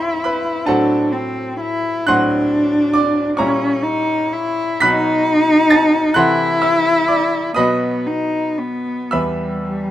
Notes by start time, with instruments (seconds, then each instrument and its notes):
Already playing: grand piano G2 G3 B3 E4 C5 E5 G5 B5 C6 E6, cello E4
0.24 grand piano B4 B5
0.65 grand piano A2 F#3 C4 F#4 A4 F#5 A5, cello D4
1.12 cello C4
1.60 cello E4
2.06 grand piano A2 F#3 C4 F#4 F#5 C6 F#6, cello D4
2.93 grand piano D5 D6
3.37 grand piano A#2 G3 C#4 E4 C#5 A#5 C#6, cello C#4
3.83 cello D#4
4.32 cello E4
4.80 grand piano B2 F#3 D#4 F#4 B5 F#6 B6, cello D#4
5.70 grand piano A5 A6
6.14 grand piano C3 E3 E4 A4 F#5 C6 F#6, cello E4
6.62 grand piano E5 E6
7.08 grand piano D5 D6
7.54 grand piano B2 F#3 B3 B4 D#5 B5 D#6, cello B3
8.07 cello D#4
8.58 cello B3
9.11 grand piano E2 G3 B3 B4 E5 B5 E6, cello G3